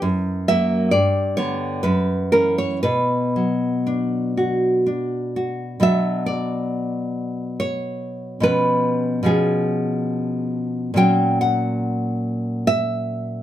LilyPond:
\new Staff \with { instrumentName = "Nylon-string guitar" } { \time 3/4 \key b \minor \tempo 4 = 69 << { r8 e''8 d''8 cis''8 b'8 ais'16 cis''16 | b'2 r4 | e''8 d''4. cis''4 | b'4 gis'4. r8 |
g''8 fis''4. e''4 | } \\ { fis,8 <fis ais>8 g,8 <d b>8 fis,8 <e cis'>8 | b,8 fis8 d'8 fis'8 d'8 fis'8 | <b, fis d'>2. | <b, eis cis'>4 <b, eis cis'>2 |
<ais, fis cis'>2. | } >> }